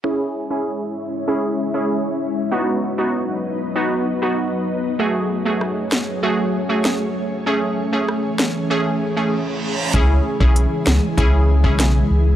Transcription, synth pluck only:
\new Staff \with { instrumentName = "Synth pluck" } { \time 4/4 \key cis \minor \tempo 4 = 97 <cis' e' gis'>8. <cis' e' gis'>16 r4 <cis' e' gis'>16 r8 <cis' e' gis'>16 r4 | <b dis' fis'>8. <b dis' fis'>16 r4 <b dis' fis'>16 r8 <b dis' fis'>16 r4 | <a fis' gis'>8. <a fis' gis'>16 r4 <a fis' gis'>16 r8 <a fis' gis'>16 r4 | <a cis' gis'>8. <a cis' gis'>16 r4 <a cis' gis'>16 r8 <a cis' gis'>16 r4 |
<cis' e' gis'>8. <cis' e' gis'>16 r4 <cis' e' gis'>16 r8 <cis' e' gis'>16 r4 | }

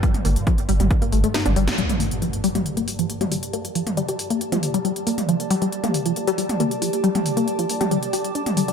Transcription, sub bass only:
\new Staff \with { instrumentName = "Sub bass" } { \clef bass \time 4/4 \key g \minor \tempo 4 = 137 r16 g,,16 g,,16 r8 g,,16 g,,16 g,,16 r16 g,,16 g,,16 r8 g,,16 g,,16 r16 | r1 | r1 | r1 |
r1 | }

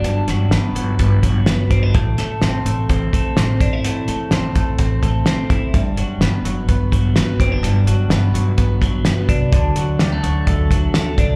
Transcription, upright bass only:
\new Staff \with { instrumentName = "Upright bass" } { \clef bass \time 4/4 \key g \major \tempo 4 = 127 g,,8 g,,8 g,,8 g,,8 g,,8 g,,8 g,,8 g,,8 | a,,8 a,,8 a,,8 a,,8 a,,8 a,,8 a,,8 g,,8 | a,,8 a,,8 a,,8 a,,8 a,,8 a,,8 a,,8 fis,,8 | g,,8 g,,8 g,,8 g,,8 g,,8 g,,8 g,,8 fis,,8 |
g,,8 g,,8 g,,8 g,,8 g,,8 g,,8 g,,8 c,8 | d,8 d,8 d,8 d,8 d,8 d,8 d,8 c,8 | }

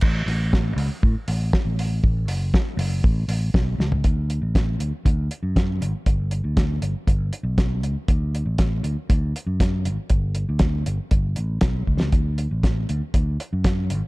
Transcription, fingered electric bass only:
\new Staff \with { instrumentName = "Fingered electric bass" } { \clef bass \time 4/4 \key d \major \tempo 4 = 119 a,,8 a,,4 cis,16 r16 a,16 r16 a,,8 r16 a,,8. | a,,8 fis,,8 r8 fis,,8 a,,8 a,,8 b,,8 cis,8 | d,8. a,,8. d,16 r16 d,8 r16 fis,8. gis,,16 r16 | g,,8. d,8. g,,16 r16 g,,8 r16 b,,8. cis,16 r16 |
d,8. a,,8. d,16 r16 d,8 r16 fis,8. gis,,16 r16 | g,,8. d,8. g,,16 r16 g,,8 a,,8 b,,8 cis,8 | d,8. a,,8. d,16 r16 d,8 r16 fis,8. gis,,16 r16 | }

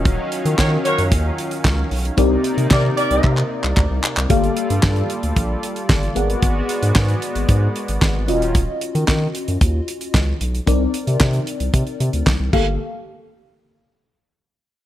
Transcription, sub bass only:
\new Staff \with { instrumentName = "Sub bass" } { \clef bass \time 4/4 \key ees \lydian \tempo 4 = 113 ees,,8 r16 ees16 ees8 r16 ges,16 ees,8 r8 des,8 b,,8 | c,8 r16 c16 c8 r16 c,16 c8 r16 c,16 d,16 c,16 r16 c,16 | g,,8 r16 g,16 g,8 r16 d,16 bes,,8 r8 g,,8 aes,,8 | aes,,8 r16 aes,16 aes,8 r16 aes,,16 aes,8 r16 aes,,16 aes,,8 ees,,8~ |
ees,,8 r16 ees16 ees8 r16 ges,16 ees,8 r8 des,8 b,,8 | c,8 r16 c16 c8 r16 c,16 c16 r16 c16 d,16 c,16 c,16 g,,8 | r1 | }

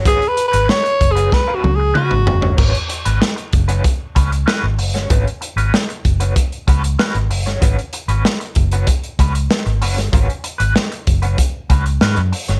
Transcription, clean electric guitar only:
\new Staff \with { instrumentName = "Clean electric guitar" } { \time 4/4 \key gis \minor \tempo 4 = 95 <cis' fis' b'>16 r8 <cis' fis' b'>16 r8. <cis' fis' b'>16 r16 <cis' fis' b'>16 r8 <cis' fis' b'>16 r8 <cis' fis' cis''>16 | <cis' fis' b'>16 r8 <cis' fis' b'>16 r8. <cis' fis' b'>16 r8 <cis' fis' b'>16 r16 <cis' fis' b'>16 r8 <cis' fis' cis''>16 | <cis' fis' b'>16 r8 <cis' fis' b'>16 r8. <cis' fis' b'>16 r8 <cis' fis' b'>16 r16 <cis' fis' b'>16 r8 <cis' fis' cis''>16 | <cis' fis' b'>16 r8 <cis' fis' b'>16 r8. <cis' fis' b'>16 r8 <cis' fis' b'>16 r8. <cis' fis' b'>16 r16 |
<cis' fis' b'>16 r8 <cis' fis' b'>16 r8. <cis' fis' b'>16 r8 <cis' fis' b'>16 r16 <cis' fis' b'>16 r8 <cis' fis' cis''>16 | }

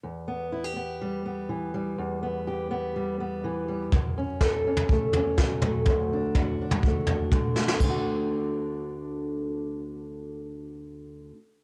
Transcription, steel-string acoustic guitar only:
\new Staff \with { instrumentName = "Steel-string acoustic guitar" } { \time 4/4 \key d \major \tempo 4 = 124 << { r8 b8 e'16 g'16 b8 g8 b4 g8~ | g8 b8 g'8 b8 g8 b4 g8 | r8 cis'8 a'8 cis'8 a8 cis'4 a8 | r8 d'8 fis'8 d'8 a8 d'4 a8 |
<d a d' fis'>1~ | <d a d' fis'>1 | } \\ { e,2. e4 | e,2. e4 | fis,2. fis4 | d,2. d4 |
d,1~ | d,1 | } >> }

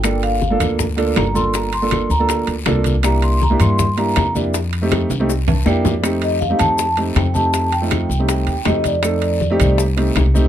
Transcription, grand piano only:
\new Staff \with { instrumentName = "Grand piano" } { \time 4/4 \key f \mixolydian \tempo 4 = 160 << { r1 | r1 | r1 | r2 r8 a''8 g''8 d''8 |
r1 | r1 | r1 | } \\ { <bes d' f' a'>4 r16 <bes d' f' a'>8. r8 <bes d' f' a'>8. r16 <bes d' f' a'>8~ | <bes d' f' a'>8 r16 <bes d' f' a'>8. r16 <bes d' f' a'>8. r8 <bes d' f' a'>8. r16 | <bes d' e' g'>4 r16 <bes d' e' g'>8. r8 <bes d' e' g'>8. r16 <bes d' e' g'>8 | r8. <a c' ees' g'>8. r16 <a c' ees' g'>16 r4 <bes d' e' g'>8. r16 |
<a c' ees' g'>4 r16 <a c' ees' g'>8. r8 <a c' ees' g'>8. r16 <a c' ees' g'>8~ | <a c' ees' g'>8 r16 <a c' ees' f'>8. r16 <a c' ees' g'>8. r8 <a c' ees' g'>8. r16 | <a c' ees' a'>4 r16 <a c' ees' g'>8. r8 <a c' ees' g'>8. r16 <a c' ees' g'>8 | } >> }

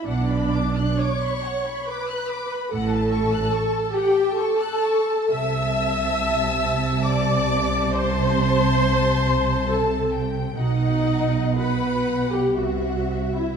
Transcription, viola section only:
\new Staff \with { instrumentName = "Viola section" } { \time 3/4 \key fis \phrygian \tempo 4 = 68 d'4 cis''4 b'4 | a'4. g'8 a'4 | \key a \dorian e''2 d''4 | c''2 a'8 r8 |
dis'4 b'8. g'16 fis'8. e'16 | }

